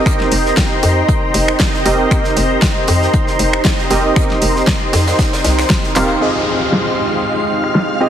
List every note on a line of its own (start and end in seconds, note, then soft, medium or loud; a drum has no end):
0.00 6.20 D#4 medium
0.00 7.95 C5 medium
0.00 6.17 D#5 medium
0.00 6.17 G5 medium
0.00 2.43 A#5 medium
0.00 6.17 A#5 medium
0.00 6.18 C6 medium
0.05 1.82 C4 medium
0.05 1.83 D#4 medium
0.05 1.83 G4 medium
0.05 1.83 A#4 medium
0.05 1.83 D#5 medium
0.05 finger snap medium
0.05 kick loud
0.05 closed hi-hat medium
0.20 snare soft
0.31 0.51 F1 medium
0.31 closed hi-hat medium
0.31 open hi-hat loud
0.46 snare medium
0.57 kick loud
0.57 snare loud
0.57 closed hi-hat medium
0.83 1.02 F2 loud
0.83 closed hi-hat medium
0.83 open hi-hat loud
1.09 kick loud
1.09 closed hi-hat medium
1.34 1.54 F1 loud
1.34 closed hi-hat medium
1.34 open hi-hat loud
1.48 finger snap medium
1.60 kick loud
1.60 snare loud
1.60 closed hi-hat medium
1.74 snare soft
1.85 2.05 F1 medium
1.85 2.08 C4 medium
1.85 2.08 D#4 medium
1.85 2.08 G4 medium
1.85 2.08 A#4 medium
1.85 2.09 D#5 medium
1.85 closed hi-hat medium
1.85 open hi-hat loud
2.10 3.87 C4 medium
2.10 3.88 D#4 medium
2.10 3.88 G4 medium
2.10 3.88 A#4 medium
2.10 3.88 D#5 medium
2.10 finger snap medium
2.10 kick loud
2.10 closed hi-hat medium
2.24 7.96 C6 medium
2.24 snare soft
2.36 2.56 F1 loud
2.36 closed hi-hat medium
2.36 open hi-hat loud
2.62 kick loud
2.62 snare loud
2.62 closed hi-hat medium
2.88 3.08 F2 loud
2.88 closed hi-hat medium
2.88 open hi-hat loud
3.02 snare medium
3.14 kick loud
3.14 closed hi-hat medium
3.27 snare soft
3.39 3.59 F1 medium
3.39 closed hi-hat medium
3.39 open hi-hat loud
3.53 finger snap medium
3.65 kick loud
3.65 snare loud
3.65 closed hi-hat medium
3.78 snare soft
3.90 4.10 F1 medium
3.90 4.13 C4 medium
3.90 4.13 D#4 medium
3.90 4.13 G4 medium
3.90 4.14 A#4 medium
3.90 4.14 D#5 medium
3.90 snare medium
3.90 closed hi-hat medium
3.90 open hi-hat loud
4.16 5.93 C4 medium
4.16 5.93 D#4 medium
4.16 5.93 G4 medium
4.16 5.93 A#4 medium
4.16 5.93 D#5 medium
4.16 finger snap medium
4.16 kick loud
4.16 closed hi-hat medium
4.30 snare soft
4.41 4.61 F1 medium
4.41 closed hi-hat medium
4.41 open hi-hat loud
4.56 snare medium
4.67 kick loud
4.67 snare loud
4.67 closed hi-hat medium
4.93 5.13 F2 loud
4.93 snare loud
4.93 closed hi-hat medium
4.93 open hi-hat loud
5.07 snare loud
5.07 closed hi-hat medium
5.19 kick loud
5.19 snare loud
5.19 closed hi-hat medium
5.33 snare medium
5.33 closed hi-hat medium
5.44 5.64 C2 medium
5.44 snare loud
5.44 closed hi-hat medium
5.44 open hi-hat loud
5.59 finger snap medium
5.59 snare loud
5.59 closed hi-hat medium
5.70 kick loud
5.70 snare loud
5.70 closed hi-hat medium
5.83 snare soft
5.95 6.15 D#1 medium
5.95 6.18 C4 medium
5.95 6.19 D#4 medium
5.95 6.19 G4 medium
5.95 6.19 A#4 medium
5.95 6.19 F5 medium
5.95 clap medium
5.95 closed hi-hat medium
5.95 open hi-hat loud
6.21 8.09 G#3 medium
6.21 7.98 C4 medium
6.21 8.09 D#4 medium
6.21 7.98 F4 medium
6.21 7.98 G4 medium
6.21 7.98 G#4 medium
6.21 8.09 D#5 medium
6.21 7.98 D#5 medium
6.21 8.09 F5 medium
6.21 8.09 G5 medium
6.21 8.09 C6 medium
6.21 8.09 F6 medium
6.21 finger snap medium
6.21 downlifter medium
6.55 8.09 G#3 medium
6.72 snare loud
6.94 8.09 F5 medium
6.99 8.09 G5 medium
7.64 finger snap medium
7.75 snare loud
8.00 8.09 C4 medium
8.00 8.09 F4 medium
8.00 8.09 G4 medium
8.00 8.09 G#4 medium
8.00 8.09 D#5 medium